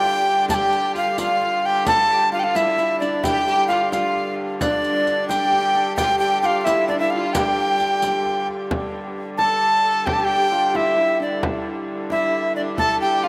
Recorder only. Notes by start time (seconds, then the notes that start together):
Already playing: G5
0.50 A5
0.54 G5
0.97 F5
1.20 F5
1.66 G5
1.87 A5
2.33 F5
2.39 G5
2.44 F5
2.56 E5
3.00 D5
3.24 G5
3.68 F5
3.92 F5
4.61 D5
5.28 G5
5.96 G5
6.19 G5
6.42 F5 G5
6.61 E5 F5
6.88 D5
6.99 E5
7.10 F5
7.33 G5
9.37 A5
10.06 G5
10.13 A5
10.20 A5
10.24 G5
10.76 E5
11.22 D5
12.11 E5
12.56 D5
12.79 A5
13.01 G5
13.24 F5